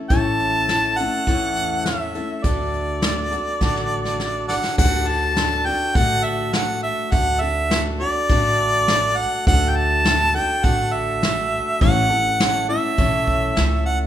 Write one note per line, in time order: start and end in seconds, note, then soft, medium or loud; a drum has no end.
0.09 1.01 A1 medium
0.09 0.69 A2 medium
0.09 0.69 E3 medium
0.09 0.68 A3 medium
0.09 0.68 C#4 medium
0.09 0.69 E4 medium
0.09 0.71 A4 medium
0.09 1.00 A5 loud
0.09 kick loud
0.09 closed hi-hat medium
0.40 closed hi-hat medium
0.68 0.98 A3 medium
0.68 0.98 C#4 medium
0.68 0.98 E4 medium
0.68 0.97 A4 medium
0.68 snare medium
0.68 closed hi-hat medium
0.98 1.26 A3 soft
0.98 1.27 C#4 medium
0.98 1.27 E4 medium
0.98 1.27 A4 soft
0.98 1.86 F#5 loud
0.98 closed hi-hat medium
1.27 2.18 E2 medium
1.27 1.86 A2 medium
1.27 1.86 E3 medium
1.27 1.85 A3 medium
1.27 1.85 C#4 medium
1.27 1.85 E4 medium
1.27 1.87 A4 medium
1.27 kick medium
1.27 closed hi-hat medium
1.56 closed hi-hat medium
1.85 2.15 A3 soft
1.85 2.15 C#4 medium
1.85 2.15 E4 medium
1.85 2.14 A4 medium
1.85 2.45 E5 medium
1.85 snare medium
1.85 closed hi-hat medium
2.15 2.43 A3 soft
2.15 2.44 C#4 soft
2.15 2.45 E4 soft
2.15 2.44 A4 soft
2.15 closed hi-hat medium
2.44 3.35 D2 medium
2.44 3.03 D3 medium
2.44 3.01 A3 medium
2.44 3.02 D4 medium
2.44 3.03 F#4 medium
2.44 3.03 A4 medium
2.44 4.47 D5 medium
2.44 kick loud
2.44 closed hi-hat medium
2.74 closed hi-hat medium
3.02 3.32 A3 medium
3.02 3.32 D4 medium
3.02 3.31 F#4 medium
3.02 3.30 A4 medium
3.02 snare loud
3.02 closed hi-hat medium
3.31 3.60 D4 medium
3.31 3.61 F#4 soft
3.31 3.61 A4 medium
3.31 closed hi-hat medium
3.61 4.52 A1 medium
3.61 4.20 D3 medium
3.61 4.18 A3 medium
3.61 4.19 D4 medium
3.61 4.20 F#4 medium
3.61 4.21 A4 medium
3.61 kick medium
3.61 snare medium
3.76 snare medium
4.05 snare soft
4.19 4.49 A3 medium
4.19 4.49 D4 medium
4.19 4.49 F#4 medium
4.19 4.48 A4 medium
4.19 snare medium
4.48 4.77 D4 soft
4.48 4.78 F#4 soft
4.48 4.54 A4 medium
4.48 4.78 A4 soft
4.48 4.55 D5 medium
4.48 4.76 F#5 medium
4.48 snare medium
4.64 snare medium
4.78 5.69 D2 medium
4.78 5.37 D3 medium
4.78 5.36 A3 medium
4.78 5.36 D4 medium
4.78 5.37 F#4 medium
4.78 5.38 A4 medium
4.78 5.10 F#5 loud
4.78 kick loud
4.78 crash loud
5.08 5.68 A5 loud
5.36 5.66 A3 medium
5.36 5.66 D4 medium
5.36 5.66 F#4 medium
5.36 5.65 A4 medium
5.36 snare loud
5.66 5.95 D4 soft
5.66 5.95 F#4 soft
5.66 5.95 A4 medium
5.66 5.98 G5 loud
5.95 6.86 A1 medium
5.95 6.54 D3 medium
5.95 6.53 A3 medium
5.95 6.53 D4 medium
5.95 6.54 F#4 loud
5.95 6.55 A4 medium
5.95 6.25 F#5 loud
5.95 kick loud
5.95 open hi-hat soft
6.24 6.55 E5 loud
6.53 7.12 A3 medium
6.53 7.11 D4 medium
6.53 7.12 F#4 medium
6.53 7.13 A4 medium
6.53 6.82 F#5 medium
6.53 snare loud
6.53 open hi-hat soft
6.83 7.13 E5 loud
7.12 8.03 D2 medium
7.12 7.41 D3 medium
7.12 7.42 A3 medium
7.12 7.42 D4 medium
7.12 7.41 F#4 medium
7.12 7.39 A4 medium
7.12 7.43 F#5 loud
7.12 kick loud
7.12 open hi-hat medium
7.41 7.70 D4 soft
7.41 7.70 F#4 soft
7.41 7.70 A4 medium
7.41 7.83 E5 loud
7.70 8.00 A3 medium
7.70 8.00 D4 medium
7.70 8.00 F#4 medium
7.70 7.99 A4 medium
7.70 snare loud
8.00 8.29 D4 soft
8.00 8.29 F#4 medium
8.00 8.29 A4 medium
8.00 9.19 D5 loud
8.29 9.20 A1 medium
8.29 8.88 D3 medium
8.29 8.88 A3 loud
8.29 8.88 D4 loud
8.29 8.89 F#4 loud
8.29 8.90 A4 medium
8.29 kick loud
8.88 9.47 A3 medium
8.88 9.46 D4 medium
8.88 9.47 F#4 medium
8.88 9.48 A4 medium
8.88 snare loud
9.17 9.46 F#5 loud
9.47 10.37 D2 loud
9.47 10.05 D3 medium
9.47 10.04 A3 medium
9.47 10.04 D4 medium
9.47 10.05 F#4 medium
9.47 10.07 A4 medium
9.47 9.71 F#5 loud
9.47 kick loud
9.47 open hi-hat medium
9.70 9.78 G5 medium
9.76 10.37 A5 loud
10.04 10.34 A3 medium
10.04 10.35 D4 medium
10.04 10.34 F#4 medium
10.04 10.33 A4 medium
10.04 snare loud
10.04 open hi-hat medium
10.34 10.63 D4 soft
10.34 10.64 F#4 medium
10.34 10.64 A4 medium
10.34 10.66 G5 loud
10.63 11.55 A1 medium
10.63 11.22 D3 loud
10.63 11.22 A3 medium
10.63 11.22 D4 medium
10.63 11.23 F#4 medium
10.63 11.24 A4 medium
10.63 10.95 F#5 loud
10.63 kick loud
10.63 open hi-hat soft
10.94 11.81 E5 medium
11.22 11.81 A3 medium
11.22 11.81 D4 medium
11.22 11.82 F#4 medium
11.22 11.82 A4 medium
11.22 snare loud
11.22 open hi-hat soft
11.81 12.72 A1 medium
11.81 12.10 A2 medium
11.81 12.10 E3 medium
11.81 12.10 A3 medium
11.81 12.10 C#4 medium
11.81 12.09 E4 medium
11.81 12.08 A4 medium
11.81 12.65 F#5 loud
11.81 kick loud
11.81 open hi-hat medium
12.10 12.37 A3 soft
12.10 12.39 C#4 soft
12.10 12.39 E4 soft
12.10 12.39 A4 medium
12.39 12.68 A3 medium
12.39 12.69 C#4 medium
12.39 12.68 E4 medium
12.39 12.67 A4 medium
12.39 snare loud
12.68 12.97 A3 soft
12.68 12.98 C#4 medium
12.68 12.98 E4 medium
12.68 12.97 A4 medium
12.68 13.82 E5 loud
12.98 13.48 B1 medium
12.98 13.56 A2 medium
12.98 13.56 E3 medium
12.98 13.56 A3 medium
12.98 13.55 C#4 medium
12.98 13.57 E4 medium
12.98 13.58 A4 medium
12.98 kick loud
12.98 open hi-hat soft
13.28 kick medium
13.56 14.06 C#2 medium
13.56 14.07 A3 medium
13.56 14.07 C#4 medium
13.56 14.07 E4 medium
13.56 14.07 A4 medium
13.56 snare loud
13.56 open hi-hat soft
13.86 13.99 F#5 medium